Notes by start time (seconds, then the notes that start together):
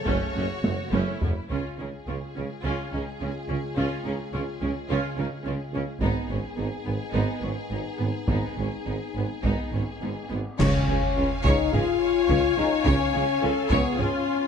Already playing: C#3 A4 C#5
0.06 F#1 F#2 A3 C#4, taiko
0.35 F#1 F#2 A3 C#4 F#4
0.64 F#1 F#2 A3, taiko high
0.92 F#1 F#2 A3 C#4 E4, taiko high
1.22 F#1 F#2 A3 C#4, taiko low
1.50 C#2 C#3 G#3 C#4 F4 G#4, taiko
1.78 C#2 C#3 C#4 D#4
2.07 C#2 C#3 C#4 F4
2.36 C#2 C#3 C#4
2.64 C#2 C#3 C#4 F4
2.92 C#2 C#3 C#4 D#4
3.20 C#2 C#3 C#4 F4
3.49 C#2 C#3 C#4
3.77 C#2 C#3 C#4 F4
4.05 C#2 C#3 C#4 D#4
4.33 C#2 C#3 C#4 F4
4.61 C#2 C#3 C#4
4.89 C#2 C#3 C#4 F4
5.17 C#2 C#3 C#4 D#4
5.44 C#2 C#3 C#4 F4
5.72 C#2 C#3 C#4
6.01 G#1 G#2 B3 D#4 G#4, taiko
6.29 G#1 G#2 B3 C#4
6.56 G#1 G#2 B3 D#4
6.85 G#1 G#2 B3
7.13 G#1 G#2 B3 D#4
7.40 G#1 G#2 B3 C#4
7.70 G#1 G#2 B3 D#4
7.98 G#1 G#2 B3
8.27 G#1 G#2 B3 D#4, taiko
8.57 G#1 G#2 B3 C#4
8.85 G#1 G#2 B3 D#4
9.14 G#1 G#2 B3
9.43 G#1 G#2 B3 D#4, taiko
9.72 G#1 G#2 B3 C#4
10.02 G#1 G#2 B3 D#4
10.29 G#1 G#2 B3
10.59 C#2 C#3 C#4 C#5 F5 G#5, concert bass drum, taiko, crash, impact
10.88 C#2 C#3 G#4
11.16 C#2 C#3 F4
11.44 C#2 C#3 D#4 C#5, taiko
11.72 C#2 C#3 F4 G#4, taiko low-mid
12.00 C#5
12.29 C#2 C#3 C#5, taiko
12.57 C#2 C#3 D#4 G#4
12.85 C#2 C#3 C#4 C#5, taiko
13.14 C#2 C#3 G#4
13.42 C#2 C#3 F4 A4
13.69 C#2 C#3 B3 G#4 C#5, taiko
13.98 C#2 C#3 C#4 F4 G#4, taiko low-mid